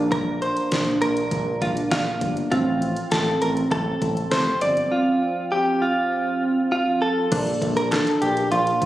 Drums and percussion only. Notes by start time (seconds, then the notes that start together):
0.12 kick, closed hi-hat
0.42 closed hi-hat
0.57 closed hi-hat
0.72 snare, closed hi-hat
1.02 closed hi-hat
1.17 closed hi-hat
1.31 kick, closed hi-hat
1.62 kick, closed hi-hat
1.77 closed hi-hat
1.91 snare, closed hi-hat
2.21 kick, closed hi-hat
2.37 closed hi-hat
2.52 kick, closed hi-hat
2.82 closed hi-hat
2.97 closed hi-hat
3.11 snare, closed hi-hat
3.42 closed hi-hat
3.57 closed hi-hat
3.71 kick, closed hi-hat
4.02 kick, closed hi-hat
4.17 closed hi-hat
4.31 snare, closed hi-hat
4.61 closed hi-hat
4.77 closed hi-hat
7.32 kick, closed hi-hat, crash
7.47 closed hi-hat
7.62 kick, closed hi-hat
7.77 closed hi-hat
7.92 snare, clap, closed hi-hat
8.07 closed hi-hat
8.22 closed hi-hat
8.37 closed hi-hat
8.52 closed hi-hat
8.67 closed hi-hat
8.82 kick, closed hi-hat